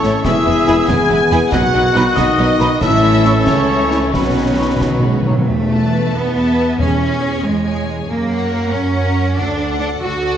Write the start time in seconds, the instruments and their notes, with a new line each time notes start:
Already playing: trombone section E3 A3, french horn section C#4, clarinet E4, cor anglais A4, trumpet A4, violin section C#5, flute section C#6
0.03 double bass section A1, cello section A2, viola section A3 C#4, violin section E4 A4, snare
0.24 double bass section E1, cello section E2, trombone section E3 B3, viola section G#3 B3, french horn section E4, violin section E4 B4 E5, trumpet G#4, flute section E6, concert bass drum, snare, crash
0.46 double bass section E1, cello section E2, viola section G#3 B3, violin section E4 B4
0.67 double bass section E1, cello section E2, viola section G#3 B3, violin section E4 B4, clarinet E4, cor anglais G#4, snare
0.88 double bass section E1, cello section E2, viola section G#3 B3, violin section E4 B4 G#5, french horn section G#4, flute section G#6, concert bass drum, snare
1.09 double bass section E1, cello section E2, viola section G#3 B3, violin section E4 B4
1.31 double bass section E1, cello section E2, viola section G#3 B3, clarinet E4, violin section E4 B4, cor anglais G#4, snare
1.52 double bass section B1, timpani B2, cello section B2, trombone section D#3, viola section F#3 B3, violin section D#4 D#5 F#5, trumpet F#4, french horn section F#4, flute section F#6, concert bass drum, snare
1.74 double bass section B1, cello section B2, viola section F#3 B3, violin section D#4 D#5
1.95 double bass section B1, cello section B2, viola section F#3 B3, violin section D#4 D#5, clarinet D#4, cor anglais B4, snare
2.17 double bass section B1, cello section B2, viola section F#3 B3, violin section D#4 D#5, french horn section D#4, flute section D#6, concert bass drum, snare
2.38 double bass section B1, cello section B2, viola section F#3 B3, violin section D#4 D#5
2.59 double bass section B1, cello section B2, viola section F#3 B3, clarinet D#4, violin section D#4 D#5, cor anglais B4, snare
2.81 double bass section A1, cello section A2, trombone section E3 C#4, viola section A3 C#4, violin section E4 C#5 E5, french horn section E4, trumpet A4, flute section E6, concert bass drum, snare
3.25 clarinet E4, cor anglais C#5, snare
3.46 double bass section C#2, cello section C#3, viola section A3 C#4, french horn section C#4, violin section E4 C#5, flute section C#6, concert bass drum, snare
3.91 clarinet E4, cor anglais C#5, snare
4.13 double bass section B1, timpani B2, cello section B2, trombone section D#3, viola section F#3 C#4, french horn section B3, violin section D#4 B4 C#5, trumpet F#4, flute section B5, concert bass drum, snare
4.22 timpani B2
4.30 timpani B2
4.37 timpani B2
4.45 timpani B2
4.52 timpani B2
4.58 timpani B2, clarinet D#4, cor anglais C#5
4.68 timpani B2
4.76 timpani B2
4.81 timpani B2, viola section F#3, concert bass drum, snare
4.91 timpani B2
4.99 timpani B2
5.05 timpani B2, viola section G#3
5.15 timpani B2
5.23 timpani B2, clarinet D#4, cor anglais C#5
5.27 cello section F#3, viola section A3
5.31 timpani B2
5.38 timpani B2
5.49 double bass section E2, timpani E2, cello section A3
5.71 viola section B4, violin section E5 A5
6.14 double bass section E2, cello section B3
6.36 viola section B4, violin section E5 A5
6.79 double bass section E2, timpani E2, cello section C#4, viola section G#4, violin section C#5 G#5
7.00 viola section G#4, violin section C#5 G#5
7.44 double bass section E2, cello section G#3
7.65 viola section G#4, violin section C#5 G#5
7.87 cello section G#3
8.08 double bass section F#2, cello section A#3
8.29 viola section A#4, violin section C#5 F#5
8.72 double bass section F#2, cello section C#4
8.93 viola section A#4, violin section C#5 F#5
9.36 double bass section D2, cello section D4, viola section A4, violin section D5 F#5
9.57 viola section A4, violin section D5 F#5
9.80 cello section D4
10.01 double bass section D2, cello section F#4
10.22 viola section A4, violin section D5 F#5